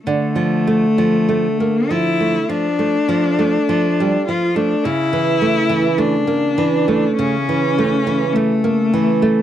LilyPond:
<<
  \new Staff \with { instrumentName = "Cello" } { \time 4/4 \key d \minor \tempo 4 = 51 a4. e'8 d'4. f'16 d'16 | e'4 d'4 cis'4 a4 | }
  \new Staff \with { instrumentName = "Nylon-string guitar" } { \clef bass \time 4/4 \key d \minor d16 f16 a16 f16 a16 bes16 f16 a16 f16 a16 f16 a16 f16 g16 f16 a16 | cis16 e16 a16 e16 a16 bes16 e16 a16 cis16 e16 a16 e16 a16 bes16 e16 a16 | }
>>